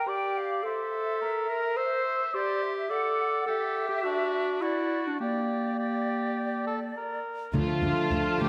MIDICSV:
0, 0, Header, 1, 13, 480
1, 0, Start_track
1, 0, Key_signature, -1, "minor"
1, 0, Tempo, 564972
1, 560, Time_signature, 4, 2, 24, 8
1, 3437, Tempo, 580833
1, 7109, End_track
2, 0, Start_track
2, 0, Title_t, "Flute section"
2, 0, Program_c, 0, 73
2, 85, Note_on_c, 0, 79, 34
2, 318, Note_off_c, 0, 79, 0
2, 321, Note_on_c, 0, 77, 38
2, 561, Note_off_c, 0, 77, 0
2, 561, Note_on_c, 0, 76, 31
2, 1514, Note_on_c, 0, 72, 40
2, 1517, Note_off_c, 0, 76, 0
2, 1994, Note_off_c, 0, 72, 0
2, 1994, Note_on_c, 0, 74, 43
2, 2230, Note_on_c, 0, 76, 41
2, 2231, Note_off_c, 0, 74, 0
2, 2473, Note_off_c, 0, 76, 0
2, 2477, Note_on_c, 0, 78, 36
2, 2955, Note_off_c, 0, 78, 0
2, 2955, Note_on_c, 0, 76, 47
2, 3908, Note_on_c, 0, 74, 36
2, 3912, Note_off_c, 0, 76, 0
2, 4384, Note_off_c, 0, 74, 0
2, 4394, Note_on_c, 0, 74, 32
2, 6057, Note_off_c, 0, 74, 0
2, 6327, Note_on_c, 0, 81, 38
2, 7109, Note_off_c, 0, 81, 0
2, 7109, End_track
3, 0, Start_track
3, 0, Title_t, "Cor anglais"
3, 0, Program_c, 1, 69
3, 69, Note_on_c, 1, 74, 37
3, 549, Note_off_c, 1, 74, 0
3, 554, Note_on_c, 1, 72, 38
3, 1028, Note_off_c, 1, 72, 0
3, 1032, Note_on_c, 1, 70, 40
3, 1506, Note_on_c, 1, 76, 43
3, 1518, Note_off_c, 1, 70, 0
3, 1992, Note_on_c, 1, 72, 50
3, 2005, Note_off_c, 1, 76, 0
3, 2307, Note_off_c, 1, 72, 0
3, 2464, Note_on_c, 1, 74, 41
3, 2915, Note_off_c, 1, 74, 0
3, 2952, Note_on_c, 1, 67, 43
3, 3441, Note_on_c, 1, 62, 44
3, 3454, Note_off_c, 1, 67, 0
3, 3910, Note_on_c, 1, 66, 41
3, 3923, Note_off_c, 1, 62, 0
3, 4388, Note_off_c, 1, 66, 0
3, 4393, Note_on_c, 1, 67, 35
3, 4870, Note_off_c, 1, 67, 0
3, 4878, Note_on_c, 1, 67, 37
3, 5573, Note_off_c, 1, 67, 0
3, 5605, Note_on_c, 1, 69, 35
3, 5714, Note_off_c, 1, 69, 0
3, 5853, Note_on_c, 1, 70, 35
3, 6322, Note_off_c, 1, 70, 0
3, 7109, End_track
4, 0, Start_track
4, 0, Title_t, "Clarinet"
4, 0, Program_c, 2, 71
4, 59, Note_on_c, 2, 67, 47
4, 533, Note_on_c, 2, 69, 55
4, 545, Note_off_c, 2, 67, 0
4, 1267, Note_on_c, 2, 70, 63
4, 1279, Note_off_c, 2, 69, 0
4, 1503, Note_on_c, 2, 72, 68
4, 1516, Note_off_c, 2, 70, 0
4, 1984, Note_off_c, 2, 72, 0
4, 1989, Note_on_c, 2, 67, 63
4, 2466, Note_on_c, 2, 69, 59
4, 2479, Note_off_c, 2, 67, 0
4, 2937, Note_off_c, 2, 69, 0
4, 2942, Note_on_c, 2, 69, 60
4, 3301, Note_off_c, 2, 69, 0
4, 3306, Note_on_c, 2, 67, 53
4, 3422, Note_on_c, 2, 66, 63
4, 3434, Note_off_c, 2, 67, 0
4, 3911, Note_on_c, 2, 64, 55
4, 3924, Note_off_c, 2, 66, 0
4, 4287, Note_on_c, 2, 62, 46
4, 4299, Note_off_c, 2, 64, 0
4, 4389, Note_off_c, 2, 62, 0
4, 4394, Note_on_c, 2, 58, 44
4, 5820, Note_off_c, 2, 58, 0
4, 6327, Note_on_c, 2, 62, 39
4, 7109, Note_off_c, 2, 62, 0
4, 7109, End_track
5, 0, Start_track
5, 0, Title_t, "Trumpet section"
5, 0, Program_c, 3, 61
5, 6331, Note_on_c, 3, 65, 54
5, 7003, Note_off_c, 3, 65, 0
5, 7031, Note_on_c, 3, 67, 53
5, 7109, Note_off_c, 3, 67, 0
5, 7109, End_track
6, 0, Start_track
6, 0, Title_t, "Viola section"
6, 0, Program_c, 4, 48
6, 6330, Note_on_c, 4, 65, 46
6, 7003, Note_off_c, 4, 65, 0
6, 7031, Note_on_c, 4, 67, 44
6, 7109, Note_off_c, 4, 67, 0
6, 7109, End_track
7, 0, Start_track
7, 0, Title_t, "French horn section"
7, 0, Program_c, 5, 60
7, 6327, Note_on_c, 5, 62, 42
7, 6330, Note_on_c, 5, 69, 43
7, 7109, Note_off_c, 5, 62, 0
7, 7109, Note_off_c, 5, 69, 0
7, 7109, End_track
8, 0, Start_track
8, 0, Title_t, "Violin section"
8, 0, Program_c, 6, 48
8, 6332, Note_on_c, 6, 57, 34
8, 6332, Note_on_c, 6, 65, 36
8, 6562, Note_off_c, 6, 57, 0
8, 6562, Note_off_c, 6, 65, 0
8, 6577, Note_on_c, 6, 57, 36
8, 6578, Note_on_c, 6, 65, 35
8, 6789, Note_off_c, 6, 57, 0
8, 6791, Note_off_c, 6, 65, 0
8, 6799, Note_on_c, 6, 57, 36
8, 6801, Note_on_c, 6, 65, 39
8, 7030, Note_off_c, 6, 57, 0
8, 7031, Note_off_c, 6, 65, 0
8, 7042, Note_on_c, 6, 65, 34
8, 7044, Note_on_c, 6, 57, 33
8, 7109, Note_off_c, 6, 57, 0
8, 7109, Note_off_c, 6, 65, 0
8, 7109, End_track
9, 0, Start_track
9, 0, Title_t, "Harp"
9, 0, Program_c, 7, 46
9, 6329, Note_on_c, 7, 50, 37
9, 6563, Note_on_c, 7, 62, 30
9, 6795, Note_on_c, 7, 65, 31
9, 7036, Note_on_c, 7, 57, 31
9, 7109, Note_off_c, 7, 50, 0
9, 7109, Note_off_c, 7, 57, 0
9, 7109, Note_off_c, 7, 62, 0
9, 7109, Note_off_c, 7, 65, 0
9, 7109, End_track
10, 0, Start_track
10, 0, Title_t, "Trombone section"
10, 0, Program_c, 8, 61
10, 6329, Note_on_c, 8, 57, 41
10, 6331, Note_on_c, 8, 53, 36
10, 7109, Note_off_c, 8, 53, 0
10, 7109, Note_off_c, 8, 57, 0
10, 7109, End_track
11, 0, Start_track
11, 0, Title_t, "Timpani"
11, 0, Program_c, 10, 47
11, 6324, Note_on_c, 10, 50, 48
11, 7000, Note_off_c, 10, 50, 0
11, 7109, End_track
12, 0, Start_track
12, 0, Title_t, "Cello section"
12, 0, Program_c, 11, 48
12, 6326, Note_on_c, 11, 38, 41
12, 6392, Note_off_c, 11, 38, 0
12, 6562, Note_on_c, 11, 38, 34
12, 6629, Note_off_c, 11, 38, 0
12, 6800, Note_on_c, 11, 38, 37
12, 6866, Note_off_c, 11, 38, 0
12, 7032, Note_on_c, 11, 38, 36
12, 7098, Note_off_c, 11, 38, 0
12, 7109, End_track
13, 0, Start_track
13, 0, Title_t, "Double bass section"
13, 0, Program_c, 12, 48
13, 6329, Note_on_c, 12, 38, 43
13, 6395, Note_off_c, 12, 38, 0
13, 6563, Note_on_c, 12, 38, 36
13, 6629, Note_off_c, 12, 38, 0
13, 6798, Note_on_c, 12, 38, 32
13, 6864, Note_off_c, 12, 38, 0
13, 7029, Note_on_c, 12, 38, 37
13, 7095, Note_off_c, 12, 38, 0
13, 7109, End_track
0, 0, End_of_file